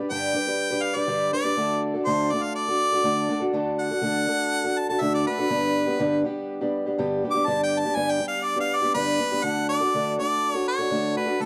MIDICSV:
0, 0, Header, 1, 3, 480
1, 0, Start_track
1, 0, Key_signature, 2, "major"
1, 0, Tempo, 490998
1, 1542, Time_signature, 4, 2, 24, 8
1, 11198, End_track
2, 0, Start_track
2, 0, Title_t, "Harmonica"
2, 0, Program_c, 0, 22
2, 100, Note_on_c, 0, 79, 111
2, 801, Note_on_c, 0, 77, 92
2, 815, Note_off_c, 0, 79, 0
2, 931, Note_on_c, 0, 74, 86
2, 946, Note_off_c, 0, 77, 0
2, 1285, Note_off_c, 0, 74, 0
2, 1302, Note_on_c, 0, 74, 98
2, 1766, Note_off_c, 0, 74, 0
2, 1997, Note_on_c, 0, 72, 98
2, 2262, Note_on_c, 0, 74, 87
2, 2277, Note_off_c, 0, 72, 0
2, 2374, Note_on_c, 0, 77, 88
2, 2389, Note_off_c, 0, 74, 0
2, 2488, Note_off_c, 0, 77, 0
2, 2495, Note_on_c, 0, 74, 108
2, 3426, Note_off_c, 0, 74, 0
2, 3710, Note_on_c, 0, 78, 119
2, 4673, Note_on_c, 0, 81, 86
2, 4687, Note_off_c, 0, 78, 0
2, 4776, Note_off_c, 0, 81, 0
2, 4783, Note_on_c, 0, 81, 91
2, 4902, Note_on_c, 0, 76, 96
2, 4917, Note_off_c, 0, 81, 0
2, 5010, Note_off_c, 0, 76, 0
2, 5027, Note_on_c, 0, 74, 81
2, 5133, Note_off_c, 0, 74, 0
2, 5151, Note_on_c, 0, 71, 105
2, 6073, Note_off_c, 0, 71, 0
2, 7141, Note_on_c, 0, 86, 91
2, 7294, Note_on_c, 0, 81, 92
2, 7309, Note_off_c, 0, 86, 0
2, 7449, Note_off_c, 0, 81, 0
2, 7460, Note_on_c, 0, 79, 88
2, 7615, Note_on_c, 0, 81, 97
2, 7629, Note_off_c, 0, 79, 0
2, 7772, Note_on_c, 0, 80, 99
2, 7787, Note_off_c, 0, 81, 0
2, 7924, Note_on_c, 0, 79, 99
2, 7939, Note_off_c, 0, 80, 0
2, 8085, Note_off_c, 0, 79, 0
2, 8094, Note_on_c, 0, 77, 91
2, 8247, Note_on_c, 0, 74, 95
2, 8262, Note_off_c, 0, 77, 0
2, 8402, Note_off_c, 0, 74, 0
2, 8408, Note_on_c, 0, 77, 92
2, 8563, Note_on_c, 0, 74, 101
2, 8577, Note_off_c, 0, 77, 0
2, 8724, Note_off_c, 0, 74, 0
2, 8744, Note_on_c, 0, 71, 100
2, 9223, Note_on_c, 0, 78, 106
2, 9238, Note_off_c, 0, 71, 0
2, 9461, Note_off_c, 0, 78, 0
2, 9471, Note_on_c, 0, 74, 98
2, 9913, Note_off_c, 0, 74, 0
2, 9969, Note_on_c, 0, 74, 99
2, 10292, Note_off_c, 0, 74, 0
2, 10292, Note_on_c, 0, 73, 99
2, 10404, Note_off_c, 0, 73, 0
2, 10442, Note_on_c, 0, 73, 96
2, 10881, Note_off_c, 0, 73, 0
2, 10916, Note_on_c, 0, 71, 86
2, 11158, Note_on_c, 0, 69, 81
2, 11172, Note_off_c, 0, 71, 0
2, 11198, Note_off_c, 0, 69, 0
2, 11198, End_track
3, 0, Start_track
3, 0, Title_t, "Steel-string acoustic guitar"
3, 0, Program_c, 1, 25
3, 0, Note_on_c, 1, 67, 48
3, 0, Note_on_c, 1, 71, 51
3, 2, Note_on_c, 1, 62, 48
3, 5, Note_on_c, 1, 55, 41
3, 92, Note_off_c, 1, 55, 0
3, 100, Note_on_c, 1, 50, 75
3, 103, Note_off_c, 1, 62, 0
3, 103, Note_off_c, 1, 67, 0
3, 103, Note_on_c, 1, 43, 81
3, 104, Note_on_c, 1, 55, 84
3, 106, Note_off_c, 1, 71, 0
3, 115, Note_on_c, 1, 62, 85
3, 115, Note_on_c, 1, 67, 85
3, 118, Note_on_c, 1, 71, 91
3, 317, Note_off_c, 1, 55, 0
3, 324, Note_off_c, 1, 62, 0
3, 329, Note_on_c, 1, 55, 62
3, 330, Note_off_c, 1, 67, 0
3, 336, Note_on_c, 1, 62, 65
3, 339, Note_off_c, 1, 71, 0
3, 342, Note_on_c, 1, 67, 59
3, 343, Note_off_c, 1, 50, 0
3, 344, Note_off_c, 1, 43, 0
3, 351, Note_on_c, 1, 71, 67
3, 448, Note_off_c, 1, 71, 0
3, 456, Note_off_c, 1, 67, 0
3, 457, Note_off_c, 1, 55, 0
3, 459, Note_on_c, 1, 71, 50
3, 460, Note_off_c, 1, 62, 0
3, 468, Note_on_c, 1, 67, 44
3, 472, Note_on_c, 1, 62, 38
3, 477, Note_on_c, 1, 55, 39
3, 676, Note_off_c, 1, 71, 0
3, 686, Note_off_c, 1, 67, 0
3, 688, Note_on_c, 1, 71, 57
3, 693, Note_off_c, 1, 62, 0
3, 698, Note_on_c, 1, 67, 52
3, 700, Note_off_c, 1, 55, 0
3, 705, Note_on_c, 1, 62, 46
3, 711, Note_on_c, 1, 55, 45
3, 918, Note_off_c, 1, 71, 0
3, 922, Note_off_c, 1, 67, 0
3, 930, Note_on_c, 1, 71, 49
3, 931, Note_off_c, 1, 55, 0
3, 932, Note_off_c, 1, 62, 0
3, 934, Note_on_c, 1, 67, 46
3, 943, Note_on_c, 1, 55, 41
3, 944, Note_on_c, 1, 62, 46
3, 1040, Note_off_c, 1, 55, 0
3, 1046, Note_off_c, 1, 62, 0
3, 1049, Note_off_c, 1, 67, 0
3, 1050, Note_on_c, 1, 50, 80
3, 1052, Note_on_c, 1, 43, 71
3, 1052, Note_on_c, 1, 55, 76
3, 1053, Note_off_c, 1, 71, 0
3, 1058, Note_on_c, 1, 62, 82
3, 1060, Note_on_c, 1, 67, 81
3, 1065, Note_on_c, 1, 71, 74
3, 1282, Note_off_c, 1, 55, 0
3, 1286, Note_off_c, 1, 62, 0
3, 1292, Note_off_c, 1, 67, 0
3, 1294, Note_on_c, 1, 55, 63
3, 1296, Note_off_c, 1, 50, 0
3, 1297, Note_off_c, 1, 43, 0
3, 1297, Note_off_c, 1, 71, 0
3, 1298, Note_on_c, 1, 62, 66
3, 1304, Note_on_c, 1, 67, 68
3, 1309, Note_on_c, 1, 71, 70
3, 1398, Note_off_c, 1, 71, 0
3, 1402, Note_off_c, 1, 67, 0
3, 1406, Note_off_c, 1, 62, 0
3, 1410, Note_on_c, 1, 71, 50
3, 1412, Note_off_c, 1, 55, 0
3, 1414, Note_on_c, 1, 67, 52
3, 1417, Note_on_c, 1, 62, 50
3, 1424, Note_on_c, 1, 55, 44
3, 1523, Note_off_c, 1, 62, 0
3, 1530, Note_on_c, 1, 50, 67
3, 1535, Note_off_c, 1, 71, 0
3, 1535, Note_on_c, 1, 62, 75
3, 1537, Note_off_c, 1, 55, 0
3, 1537, Note_off_c, 1, 67, 0
3, 1541, Note_on_c, 1, 57, 73
3, 1541, Note_on_c, 1, 66, 75
3, 1542, Note_on_c, 1, 69, 83
3, 1884, Note_off_c, 1, 69, 0
3, 1894, Note_off_c, 1, 66, 0
3, 1895, Note_off_c, 1, 50, 0
3, 1895, Note_on_c, 1, 69, 51
3, 1897, Note_off_c, 1, 62, 0
3, 1900, Note_off_c, 1, 57, 0
3, 1906, Note_on_c, 1, 66, 45
3, 1911, Note_on_c, 1, 62, 45
3, 2015, Note_off_c, 1, 62, 0
3, 2015, Note_off_c, 1, 66, 0
3, 2018, Note_off_c, 1, 69, 0
3, 2021, Note_on_c, 1, 50, 85
3, 2022, Note_on_c, 1, 57, 85
3, 2027, Note_on_c, 1, 62, 83
3, 2027, Note_on_c, 1, 66, 86
3, 2033, Note_on_c, 1, 69, 90
3, 2255, Note_off_c, 1, 57, 0
3, 2260, Note_off_c, 1, 50, 0
3, 2263, Note_off_c, 1, 62, 0
3, 2263, Note_off_c, 1, 66, 0
3, 2266, Note_off_c, 1, 69, 0
3, 2267, Note_on_c, 1, 57, 64
3, 2273, Note_on_c, 1, 62, 62
3, 2282, Note_on_c, 1, 69, 65
3, 2283, Note_on_c, 1, 66, 64
3, 2612, Note_off_c, 1, 69, 0
3, 2619, Note_off_c, 1, 66, 0
3, 2622, Note_off_c, 1, 57, 0
3, 2623, Note_on_c, 1, 69, 53
3, 2625, Note_off_c, 1, 62, 0
3, 2631, Note_on_c, 1, 66, 53
3, 2642, Note_on_c, 1, 62, 41
3, 2846, Note_off_c, 1, 69, 0
3, 2858, Note_on_c, 1, 69, 50
3, 2861, Note_off_c, 1, 66, 0
3, 2862, Note_off_c, 1, 62, 0
3, 2873, Note_on_c, 1, 62, 41
3, 2873, Note_on_c, 1, 66, 45
3, 2963, Note_off_c, 1, 62, 0
3, 2967, Note_off_c, 1, 66, 0
3, 2967, Note_on_c, 1, 50, 75
3, 2969, Note_off_c, 1, 69, 0
3, 2974, Note_on_c, 1, 62, 79
3, 2978, Note_on_c, 1, 57, 75
3, 2979, Note_on_c, 1, 66, 86
3, 2981, Note_on_c, 1, 69, 79
3, 3203, Note_off_c, 1, 57, 0
3, 3207, Note_off_c, 1, 62, 0
3, 3212, Note_off_c, 1, 50, 0
3, 3213, Note_off_c, 1, 66, 0
3, 3215, Note_on_c, 1, 57, 77
3, 3219, Note_off_c, 1, 69, 0
3, 3219, Note_on_c, 1, 62, 71
3, 3225, Note_on_c, 1, 66, 84
3, 3234, Note_on_c, 1, 69, 83
3, 3313, Note_off_c, 1, 69, 0
3, 3324, Note_on_c, 1, 69, 66
3, 3328, Note_off_c, 1, 66, 0
3, 3330, Note_off_c, 1, 62, 0
3, 3336, Note_off_c, 1, 57, 0
3, 3340, Note_on_c, 1, 66, 56
3, 3342, Note_on_c, 1, 62, 50
3, 3449, Note_off_c, 1, 62, 0
3, 3450, Note_off_c, 1, 69, 0
3, 3450, Note_on_c, 1, 50, 82
3, 3451, Note_off_c, 1, 66, 0
3, 3457, Note_on_c, 1, 57, 93
3, 3461, Note_on_c, 1, 62, 92
3, 3463, Note_on_c, 1, 66, 96
3, 3463, Note_on_c, 1, 69, 96
3, 3810, Note_off_c, 1, 69, 0
3, 3811, Note_off_c, 1, 66, 0
3, 3813, Note_off_c, 1, 50, 0
3, 3816, Note_off_c, 1, 57, 0
3, 3818, Note_off_c, 1, 62, 0
3, 3822, Note_on_c, 1, 69, 49
3, 3823, Note_on_c, 1, 66, 44
3, 3834, Note_on_c, 1, 62, 40
3, 3920, Note_off_c, 1, 66, 0
3, 3921, Note_off_c, 1, 62, 0
3, 3926, Note_on_c, 1, 50, 82
3, 3926, Note_on_c, 1, 57, 85
3, 3929, Note_off_c, 1, 69, 0
3, 3932, Note_on_c, 1, 62, 77
3, 3932, Note_on_c, 1, 66, 79
3, 3941, Note_on_c, 1, 69, 82
3, 4162, Note_off_c, 1, 62, 0
3, 4163, Note_off_c, 1, 57, 0
3, 4165, Note_off_c, 1, 66, 0
3, 4171, Note_off_c, 1, 50, 0
3, 4174, Note_on_c, 1, 62, 60
3, 4175, Note_on_c, 1, 57, 59
3, 4177, Note_on_c, 1, 66, 65
3, 4178, Note_off_c, 1, 69, 0
3, 4193, Note_on_c, 1, 69, 73
3, 4525, Note_off_c, 1, 69, 0
3, 4533, Note_off_c, 1, 66, 0
3, 4534, Note_off_c, 1, 62, 0
3, 4535, Note_off_c, 1, 57, 0
3, 4537, Note_on_c, 1, 69, 52
3, 4545, Note_on_c, 1, 66, 54
3, 4558, Note_on_c, 1, 62, 45
3, 4770, Note_off_c, 1, 69, 0
3, 4780, Note_off_c, 1, 66, 0
3, 4781, Note_on_c, 1, 69, 53
3, 4786, Note_off_c, 1, 62, 0
3, 4799, Note_on_c, 1, 66, 48
3, 4805, Note_on_c, 1, 62, 46
3, 4896, Note_off_c, 1, 62, 0
3, 4898, Note_off_c, 1, 69, 0
3, 4898, Note_on_c, 1, 50, 80
3, 4902, Note_off_c, 1, 66, 0
3, 4904, Note_on_c, 1, 57, 75
3, 4908, Note_on_c, 1, 62, 82
3, 4913, Note_on_c, 1, 69, 88
3, 4914, Note_on_c, 1, 66, 89
3, 5136, Note_off_c, 1, 50, 0
3, 5137, Note_off_c, 1, 57, 0
3, 5137, Note_off_c, 1, 62, 0
3, 5143, Note_off_c, 1, 69, 0
3, 5144, Note_off_c, 1, 66, 0
3, 5149, Note_on_c, 1, 57, 60
3, 5149, Note_on_c, 1, 62, 64
3, 5157, Note_on_c, 1, 66, 65
3, 5165, Note_on_c, 1, 69, 67
3, 5250, Note_off_c, 1, 69, 0
3, 5260, Note_off_c, 1, 66, 0
3, 5261, Note_off_c, 1, 57, 0
3, 5261, Note_off_c, 1, 62, 0
3, 5262, Note_on_c, 1, 69, 54
3, 5271, Note_on_c, 1, 66, 48
3, 5278, Note_on_c, 1, 62, 50
3, 5368, Note_off_c, 1, 62, 0
3, 5373, Note_on_c, 1, 43, 75
3, 5376, Note_off_c, 1, 66, 0
3, 5376, Note_on_c, 1, 50, 76
3, 5377, Note_on_c, 1, 59, 84
3, 5378, Note_off_c, 1, 69, 0
3, 5379, Note_on_c, 1, 55, 80
3, 5379, Note_on_c, 1, 62, 82
3, 5385, Note_on_c, 1, 67, 87
3, 5721, Note_off_c, 1, 67, 0
3, 5729, Note_off_c, 1, 62, 0
3, 5732, Note_off_c, 1, 59, 0
3, 5732, Note_on_c, 1, 67, 59
3, 5733, Note_off_c, 1, 43, 0
3, 5735, Note_off_c, 1, 50, 0
3, 5736, Note_off_c, 1, 55, 0
3, 5741, Note_on_c, 1, 62, 53
3, 5743, Note_on_c, 1, 59, 54
3, 5750, Note_on_c, 1, 55, 48
3, 5844, Note_off_c, 1, 55, 0
3, 5849, Note_off_c, 1, 59, 0
3, 5853, Note_off_c, 1, 67, 0
3, 5853, Note_on_c, 1, 43, 91
3, 5856, Note_on_c, 1, 55, 93
3, 5857, Note_off_c, 1, 62, 0
3, 5860, Note_on_c, 1, 50, 90
3, 5860, Note_on_c, 1, 59, 95
3, 5869, Note_on_c, 1, 62, 94
3, 5871, Note_on_c, 1, 67, 96
3, 6090, Note_off_c, 1, 59, 0
3, 6091, Note_off_c, 1, 55, 0
3, 6093, Note_off_c, 1, 43, 0
3, 6097, Note_off_c, 1, 50, 0
3, 6098, Note_off_c, 1, 62, 0
3, 6102, Note_off_c, 1, 67, 0
3, 6102, Note_on_c, 1, 55, 67
3, 6102, Note_on_c, 1, 59, 70
3, 6110, Note_on_c, 1, 62, 77
3, 6118, Note_on_c, 1, 67, 84
3, 6449, Note_off_c, 1, 67, 0
3, 6454, Note_off_c, 1, 62, 0
3, 6458, Note_off_c, 1, 55, 0
3, 6458, Note_off_c, 1, 59, 0
3, 6461, Note_on_c, 1, 67, 64
3, 6465, Note_on_c, 1, 62, 58
3, 6476, Note_on_c, 1, 59, 53
3, 6477, Note_on_c, 1, 55, 54
3, 6693, Note_off_c, 1, 67, 0
3, 6699, Note_off_c, 1, 62, 0
3, 6704, Note_off_c, 1, 59, 0
3, 6705, Note_off_c, 1, 55, 0
3, 6705, Note_on_c, 1, 67, 60
3, 6713, Note_on_c, 1, 62, 58
3, 6717, Note_on_c, 1, 59, 49
3, 6723, Note_on_c, 1, 55, 44
3, 6817, Note_off_c, 1, 55, 0
3, 6819, Note_off_c, 1, 67, 0
3, 6820, Note_off_c, 1, 59, 0
3, 6823, Note_off_c, 1, 62, 0
3, 6825, Note_on_c, 1, 43, 86
3, 6829, Note_on_c, 1, 55, 93
3, 6830, Note_on_c, 1, 50, 88
3, 6832, Note_on_c, 1, 59, 88
3, 6835, Note_on_c, 1, 62, 97
3, 6838, Note_on_c, 1, 67, 97
3, 7056, Note_off_c, 1, 55, 0
3, 7059, Note_off_c, 1, 43, 0
3, 7062, Note_off_c, 1, 50, 0
3, 7063, Note_off_c, 1, 59, 0
3, 7064, Note_off_c, 1, 62, 0
3, 7066, Note_off_c, 1, 67, 0
3, 7067, Note_on_c, 1, 55, 64
3, 7078, Note_on_c, 1, 59, 67
3, 7087, Note_on_c, 1, 62, 72
3, 7087, Note_on_c, 1, 67, 75
3, 7165, Note_off_c, 1, 67, 0
3, 7177, Note_on_c, 1, 67, 62
3, 7178, Note_off_c, 1, 62, 0
3, 7180, Note_off_c, 1, 55, 0
3, 7186, Note_off_c, 1, 59, 0
3, 7190, Note_on_c, 1, 62, 62
3, 7195, Note_on_c, 1, 55, 47
3, 7197, Note_on_c, 1, 59, 48
3, 7295, Note_off_c, 1, 67, 0
3, 7297, Note_off_c, 1, 55, 0
3, 7297, Note_off_c, 1, 62, 0
3, 7302, Note_off_c, 1, 59, 0
3, 7305, Note_on_c, 1, 43, 75
3, 7308, Note_on_c, 1, 50, 83
3, 7308, Note_on_c, 1, 55, 84
3, 7309, Note_on_c, 1, 62, 81
3, 7311, Note_on_c, 1, 67, 87
3, 7313, Note_on_c, 1, 59, 84
3, 7659, Note_off_c, 1, 43, 0
3, 7661, Note_off_c, 1, 50, 0
3, 7661, Note_off_c, 1, 55, 0
3, 7661, Note_off_c, 1, 62, 0
3, 7662, Note_off_c, 1, 67, 0
3, 7664, Note_off_c, 1, 59, 0
3, 7674, Note_on_c, 1, 67, 59
3, 7681, Note_on_c, 1, 62, 49
3, 7686, Note_on_c, 1, 59, 45
3, 7692, Note_on_c, 1, 55, 46
3, 7776, Note_off_c, 1, 55, 0
3, 7778, Note_off_c, 1, 59, 0
3, 7779, Note_off_c, 1, 62, 0
3, 7782, Note_off_c, 1, 67, 0
3, 7785, Note_on_c, 1, 43, 79
3, 7785, Note_on_c, 1, 50, 77
3, 7788, Note_on_c, 1, 55, 86
3, 7790, Note_on_c, 1, 59, 90
3, 7791, Note_on_c, 1, 62, 84
3, 7794, Note_on_c, 1, 67, 93
3, 8001, Note_off_c, 1, 55, 0
3, 8006, Note_off_c, 1, 59, 0
3, 8009, Note_off_c, 1, 62, 0
3, 8013, Note_on_c, 1, 55, 64
3, 8017, Note_off_c, 1, 67, 0
3, 8018, Note_on_c, 1, 59, 68
3, 8020, Note_off_c, 1, 43, 0
3, 8020, Note_off_c, 1, 50, 0
3, 8021, Note_on_c, 1, 62, 66
3, 8029, Note_on_c, 1, 67, 70
3, 8357, Note_off_c, 1, 67, 0
3, 8365, Note_off_c, 1, 62, 0
3, 8368, Note_off_c, 1, 59, 0
3, 8369, Note_on_c, 1, 67, 56
3, 8371, Note_off_c, 1, 55, 0
3, 8377, Note_on_c, 1, 62, 54
3, 8380, Note_on_c, 1, 59, 49
3, 8383, Note_on_c, 1, 55, 50
3, 8608, Note_off_c, 1, 67, 0
3, 8617, Note_off_c, 1, 62, 0
3, 8618, Note_off_c, 1, 59, 0
3, 8619, Note_off_c, 1, 55, 0
3, 8620, Note_on_c, 1, 67, 54
3, 8629, Note_on_c, 1, 62, 52
3, 8633, Note_on_c, 1, 55, 42
3, 8637, Note_on_c, 1, 59, 44
3, 8733, Note_off_c, 1, 55, 0
3, 8733, Note_off_c, 1, 59, 0
3, 8738, Note_off_c, 1, 67, 0
3, 8740, Note_off_c, 1, 62, 0
3, 8741, Note_on_c, 1, 43, 79
3, 8744, Note_on_c, 1, 55, 85
3, 8745, Note_on_c, 1, 59, 95
3, 8747, Note_on_c, 1, 50, 76
3, 8750, Note_on_c, 1, 67, 84
3, 8751, Note_on_c, 1, 62, 89
3, 8977, Note_off_c, 1, 55, 0
3, 8979, Note_off_c, 1, 43, 0
3, 8981, Note_off_c, 1, 59, 0
3, 8982, Note_off_c, 1, 50, 0
3, 8983, Note_off_c, 1, 67, 0
3, 8984, Note_off_c, 1, 62, 0
3, 8989, Note_on_c, 1, 55, 70
3, 8992, Note_on_c, 1, 59, 68
3, 9001, Note_on_c, 1, 62, 63
3, 9007, Note_on_c, 1, 67, 72
3, 9095, Note_off_c, 1, 67, 0
3, 9096, Note_off_c, 1, 62, 0
3, 9103, Note_off_c, 1, 55, 0
3, 9104, Note_off_c, 1, 59, 0
3, 9107, Note_on_c, 1, 67, 63
3, 9108, Note_on_c, 1, 62, 55
3, 9118, Note_on_c, 1, 59, 54
3, 9125, Note_on_c, 1, 55, 50
3, 9213, Note_off_c, 1, 62, 0
3, 9219, Note_off_c, 1, 55, 0
3, 9221, Note_off_c, 1, 59, 0
3, 9222, Note_off_c, 1, 67, 0
3, 9223, Note_on_c, 1, 50, 70
3, 9223, Note_on_c, 1, 57, 68
3, 9224, Note_on_c, 1, 66, 76
3, 9225, Note_on_c, 1, 62, 73
3, 9227, Note_on_c, 1, 69, 77
3, 9575, Note_off_c, 1, 69, 0
3, 9581, Note_off_c, 1, 50, 0
3, 9581, Note_off_c, 1, 57, 0
3, 9582, Note_off_c, 1, 62, 0
3, 9582, Note_off_c, 1, 66, 0
3, 9587, Note_on_c, 1, 69, 45
3, 9596, Note_on_c, 1, 66, 43
3, 9604, Note_on_c, 1, 62, 41
3, 9703, Note_off_c, 1, 69, 0
3, 9707, Note_off_c, 1, 66, 0
3, 9711, Note_off_c, 1, 62, 0
3, 9719, Note_on_c, 1, 57, 75
3, 9723, Note_on_c, 1, 50, 77
3, 9724, Note_on_c, 1, 62, 77
3, 9731, Note_on_c, 1, 66, 82
3, 9731, Note_on_c, 1, 69, 84
3, 9948, Note_off_c, 1, 62, 0
3, 9950, Note_off_c, 1, 57, 0
3, 9952, Note_off_c, 1, 50, 0
3, 9956, Note_off_c, 1, 66, 0
3, 9956, Note_off_c, 1, 69, 0
3, 9960, Note_on_c, 1, 62, 58
3, 9961, Note_on_c, 1, 57, 57
3, 9972, Note_on_c, 1, 69, 63
3, 9974, Note_on_c, 1, 66, 62
3, 10297, Note_off_c, 1, 69, 0
3, 10300, Note_off_c, 1, 66, 0
3, 10309, Note_on_c, 1, 69, 56
3, 10311, Note_off_c, 1, 62, 0
3, 10312, Note_off_c, 1, 57, 0
3, 10312, Note_on_c, 1, 66, 45
3, 10322, Note_on_c, 1, 62, 44
3, 10532, Note_off_c, 1, 69, 0
3, 10540, Note_off_c, 1, 66, 0
3, 10544, Note_on_c, 1, 69, 51
3, 10550, Note_off_c, 1, 62, 0
3, 10552, Note_on_c, 1, 66, 46
3, 10562, Note_on_c, 1, 62, 41
3, 10658, Note_off_c, 1, 62, 0
3, 10660, Note_on_c, 1, 50, 73
3, 10661, Note_off_c, 1, 66, 0
3, 10664, Note_off_c, 1, 69, 0
3, 10669, Note_on_c, 1, 62, 72
3, 10671, Note_on_c, 1, 57, 75
3, 10673, Note_on_c, 1, 66, 81
3, 10677, Note_on_c, 1, 69, 75
3, 10890, Note_off_c, 1, 57, 0
3, 10894, Note_off_c, 1, 66, 0
3, 10895, Note_off_c, 1, 62, 0
3, 10901, Note_on_c, 1, 57, 58
3, 10903, Note_off_c, 1, 50, 0
3, 10903, Note_off_c, 1, 69, 0
3, 10905, Note_on_c, 1, 66, 64
3, 10907, Note_on_c, 1, 62, 59
3, 10915, Note_on_c, 1, 69, 63
3, 10998, Note_off_c, 1, 69, 0
3, 11008, Note_off_c, 1, 66, 0
3, 11009, Note_on_c, 1, 69, 52
3, 11018, Note_off_c, 1, 62, 0
3, 11020, Note_on_c, 1, 66, 52
3, 11024, Note_off_c, 1, 57, 0
3, 11030, Note_on_c, 1, 62, 45
3, 11127, Note_off_c, 1, 62, 0
3, 11134, Note_off_c, 1, 69, 0
3, 11137, Note_off_c, 1, 66, 0
3, 11139, Note_on_c, 1, 62, 82
3, 11141, Note_on_c, 1, 50, 65
3, 11145, Note_on_c, 1, 57, 69
3, 11146, Note_on_c, 1, 69, 86
3, 11148, Note_on_c, 1, 66, 76
3, 11198, Note_off_c, 1, 50, 0
3, 11198, Note_off_c, 1, 57, 0
3, 11198, Note_off_c, 1, 62, 0
3, 11198, Note_off_c, 1, 66, 0
3, 11198, Note_off_c, 1, 69, 0
3, 11198, End_track
0, 0, End_of_file